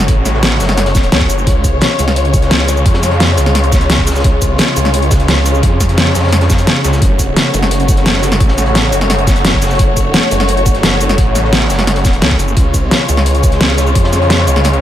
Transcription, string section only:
0.00 1.43 C#3 medium
0.00 1.43 A3 medium
0.00 1.43 F#4 medium
0.00 6.98 C#5 medium
1.47 12.53 C#3 medium
1.47 6.98 G#3 medium
1.47 6.98 F4 medium
7.02 12.53 A3 medium
7.02 12.53 F#4 medium
7.02 12.53 C#5 medium
12.57 14.81 C#3 medium
12.57 14.81 G#3 medium
12.57 14.81 F4 medium
12.57 14.81 C#5 loud

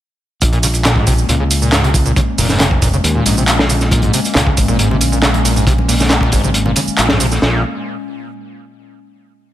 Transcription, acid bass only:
0.53 0.58 A#2 medium
0.63 0.67 C#3 medium
0.85 0.94 A#2 medium
0.96 1.05 G#2 medium
1.07 1.13 C3 medium
1.29 1.35 A#2 medium
1.40 1.44 C#3 medium
1.62 1.71 A#2 medium
1.73 1.82 G#2 medium
1.84 1.90 C3 loud
2.06 2.12 A#2 medium
2.16 2.20 C#3 medium
2.38 2.48 A#2 medium
2.50 2.58 G#2 medium
2.60 2.66 C3 loud
2.82 2.88 A#2 medium
2.93 2.97 C#3 medium
3.15 3.24 A#2 medium
3.26 3.35 G#2 medium
3.37 3.43 C3 loud
3.59 3.65 A#2 medium
3.70 3.74 C#3 medium
3.92 4.01 A#2 medium
4.03 4.12 G#2 medium
4.14 4.20 C3 loud
4.36 4.42 A#2 medium
4.47 4.50 C#3 medium
4.68 4.77 A#2 medium
4.79 4.89 G#2 medium
4.91 4.96 C3 loud
5.12 5.18 A#2 medium
5.23 5.27 C#3 medium
5.45 5.54 A#2 medium
5.56 5.65 G#2 medium
5.67 5.73 C3 loud
5.88 5.95 A#2 medium
6.00 6.04 C#3 medium
6.22 6.31 A#2 medium
6.32 6.42 G#2 medium
6.44 6.50 C3 loud
6.66 6.72 A#2 medium
6.76 6.80 C#3 medium
6.98 7.07 A#2 medium
7.10 7.18 G#2 medium
7.20 7.26 C3 loud
7.42 7.63 A#2 loud

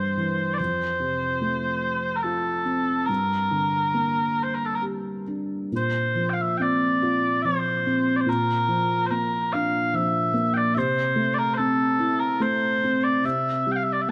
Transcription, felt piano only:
0.00 0.61 G2 soft
0.00 0.16 E3 soft
0.00 0.55 E4 soft
0.18 0.58 E3 soft
0.60 3.06 F2 soft
1.00 2.62 C3 soft
1.41 3.06 A3 soft
2.24 3.07 F4 soft
2.65 3.08 C4 soft
3.09 5.67 G2 soft
3.51 5.23 D3 soft
3.94 5.67 A#3 soft
4.82 5.68 G4 soft
5.27 5.70 D4 soft
5.72 8.24 A#2 soft
6.15 7.43 F3 soft
6.60 7.85 C4 soft
7.02 8.24 F4 soft
7.45 8.26 F3 soft
7.87 8.27 C4 soft
8.26 10.71 A#2 soft
8.68 9.92 F3 soft
9.11 10.32 A#3 soft
9.54 10.73 D4 soft
9.94 10.73 F3 medium
10.33 10.74 A#3 soft
10.76 13.21 C3 medium
11.16 12.39 A3 medium
11.59 12.82 C4 soft
11.99 13.20 E4 soft
12.40 13.21 A3 soft
12.84 13.24 C4 soft
13.24 14.11 C3 soft
13.67 14.11 G3 soft
14.08 14.11 A#3 soft

